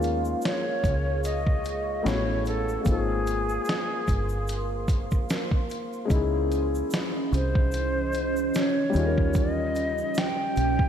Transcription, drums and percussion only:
0.02 closed hi-hat, shaker
0.25 shaker
0.42 snare, closed hi-hat, shaker
0.84 kick, closed hi-hat, shaker
1.24 closed hi-hat, shaker
1.47 kick
1.64 closed hi-hat, shaker
2.06 snare, closed hi-hat, shaker
2.45 closed hi-hat, shaker
2.69 shaker
2.85 kick, closed hi-hat, shaker
3.27 closed hi-hat, shaker
3.49 shaker
3.65 shaker
3.69 snare, closed hi-hat
4.07 kick, closed hi-hat, shaker
4.29 shaker
4.47 closed hi-hat, shaker
4.88 kick, closed hi-hat, shaker
5.11 kick, shaker
5.29 snare, closed hi-hat, shaker
5.51 kick
5.70 closed hi-hat, shaker
5.93 shaker
6.10 kick, closed hi-hat, shaker
6.51 closed hi-hat, shaker
6.75 shaker
6.90 snare, closed hi-hat, shaker
7.33 closed hi-hat, shaker
7.55 kick
7.71 closed hi-hat, shaker
8.12 closed hi-hat, shaker
8.36 shaker
8.54 snare, closed hi-hat, shaker
8.93 closed hi-hat, shaker
9.18 kick
9.34 kick, closed hi-hat, shaker
9.75 closed hi-hat, shaker
9.98 shaker
10.14 snare, closed hi-hat, shaker
10.56 closed hi-hat, shaker
10.79 kick

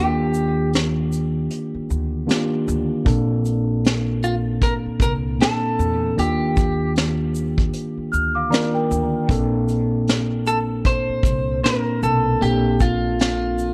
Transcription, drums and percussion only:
0.34 shaker
0.73 snare, closed hi-hat
1.12 closed hi-hat, shaker
1.50 closed hi-hat
1.91 shaker
2.29 snare, closed hi-hat
2.68 shaker
3.06 kick, closed hi-hat
3.45 closed hi-hat, shaker
3.84 snare, closed hi-hat
4.23 shaker
4.62 kick, closed hi-hat
5.00 kick, shaker
5.40 snare, closed hi-hat
5.80 shaker
6.18 closed hi-hat
6.57 kick, shaker
6.96 snare, closed hi-hat
7.35 shaker
7.58 kick
7.73 closed hi-hat
8.13 shaker
8.52 snare, closed hi-hat
8.91 shaker
9.29 kick, closed hi-hat
9.68 closed hi-hat, shaker
10.07 snare, closed hi-hat
10.47 shaker
10.85 kick, closed hi-hat
11.23 kick, shaker
11.64 snare, closed hi-hat
12.03 shaker
12.42 closed hi-hat
12.80 kick, closed hi-hat, shaker
13.19 snare, closed hi-hat
13.59 closed hi-hat, shaker

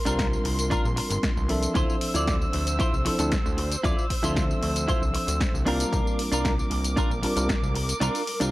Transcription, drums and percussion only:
0.06 closed hi-hat, tambourine
0.19 kick, snare, closed hi-hat, tambourine
0.33 tambourine
0.45 open hi-hat
0.59 closed hi-hat, tambourine
0.71 kick, closed hi-hat, tambourine
0.85 tambourine
0.97 open hi-hat
1.10 closed hi-hat, tambourine
1.23 kick, snare, closed hi-hat, tambourine
1.37 tambourine
1.49 open hi-hat
1.63 closed hi-hat, tambourine
1.75 kick, closed hi-hat, tambourine
1.90 tambourine
2.01 open hi-hat
2.15 closed hi-hat, tambourine
2.27 kick, snare, closed hi-hat, tambourine
2.42 tambourine
2.53 open hi-hat
2.67 closed hi-hat, tambourine
2.80 kick, closed hi-hat, tambourine
2.94 tambourine
3.06 open hi-hat
3.19 closed hi-hat, tambourine
3.32 kick, snare, closed hi-hat, tambourine
3.46 tambourine
3.58 open hi-hat
3.72 closed hi-hat, tambourine
3.84 kick, closed hi-hat, tambourine
3.99 tambourine
4.10 kick, open hi-hat
4.24 closed hi-hat, tambourine
4.36 kick, snare, closed hi-hat, tambourine
4.51 tambourine
4.63 open hi-hat
4.76 closed hi-hat, tambourine
4.88 kick, closed hi-hat, tambourine
5.03 tambourine
5.14 open hi-hat
5.28 closed hi-hat, tambourine
5.40 kick, snare, closed hi-hat, tambourine
5.55 tambourine
5.67 open hi-hat
5.80 closed hi-hat, tambourine
5.93 kick, closed hi-hat, tambourine
6.07 tambourine
6.19 open hi-hat
6.32 closed hi-hat, tambourine
6.45 kick, snare, closed hi-hat, tambourine
6.59 tambourine
6.71 open hi-hat
6.84 closed hi-hat, tambourine
6.97 kick, closed hi-hat, tambourine
7.11 tambourine
7.23 open hi-hat
7.37 closed hi-hat, tambourine
7.49 kick, snare, closed hi-hat, tambourine
7.63 tambourine
7.75 open hi-hat
7.89 closed hi-hat, tambourine
8.01 closed hi-hat, tambourine
8.15 open hi-hat, tambourine
8.27 open hi-hat
8.41 closed hi-hat, tambourine

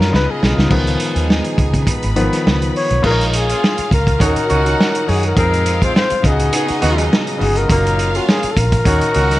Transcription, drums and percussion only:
0.01 snare
0.14 snare
0.43 snare
0.58 snare
0.71 kick, crash
0.87 closed hi-hat
1.00 closed hi-hat
1.16 closed hi-hat
1.30 snare
1.44 closed hi-hat
1.58 kick, closed hi-hat
1.74 kick, closed hi-hat
1.87 kick, closed hi-hat
2.03 closed hi-hat
2.16 closed hi-hat
2.33 snare, closed hi-hat
2.47 snare
2.62 closed hi-hat
2.76 open hi-hat
2.90 closed hi-hat
3.04 kick, crash
3.21 closed hi-hat
3.33 closed hi-hat
3.49 closed hi-hat
3.64 snare
3.78 closed hi-hat
3.91 kick, closed hi-hat
4.07 kick, closed hi-hat
4.20 kick, closed hi-hat
4.36 closed hi-hat
4.50 closed hi-hat
4.66 closed hi-hat
4.80 snare
4.95 closed hi-hat
5.09 open hi-hat
5.23 closed hi-hat
5.37 kick, closed hi-hat
5.54 closed hi-hat
5.66 closed hi-hat
5.82 kick, closed hi-hat
5.96 snare
6.10 closed hi-hat
6.24 kick, closed hi-hat
6.40 closed hi-hat
6.53 closed hi-hat
6.68 closed hi-hat
6.82 closed hi-hat
6.98 closed hi-hat
7.13 snare
7.27 closed hi-hat
7.41 open hi-hat
7.56 closed hi-hat
7.70 kick, closed hi-hat
7.87 closed hi-hat
7.99 closed hi-hat
8.15 closed hi-hat
8.29 snare
8.43 closed hi-hat
8.57 kick, closed hi-hat
8.72 kick, closed hi-hat
8.85 kick, closed hi-hat
9.01 closed hi-hat
9.14 closed hi-hat
9.31 snare, closed hi-hat

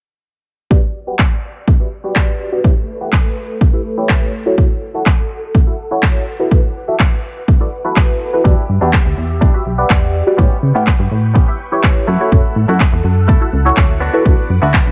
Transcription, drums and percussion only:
0.71 kick
1.19 kick, clap
1.68 kick
2.16 kick, clap
2.64 kick
3.13 kick, clap
3.61 kick
4.09 kick, clap
4.58 kick
5.06 kick, clap
5.55 kick
6.03 kick, clap
6.51 kick
7.00 kick, clap
7.48 kick
7.96 kick, clap
8.45 kick
8.93 kick, clap
9.42 kick
9.90 kick, clap
10.39 kick
10.87 kick, clap
11.35 kick
11.84 kick, clap
12.32 kick
12.80 kick, clap
13.29 kick
13.77 kick, clap
14.26 kick
14.74 kick, clap

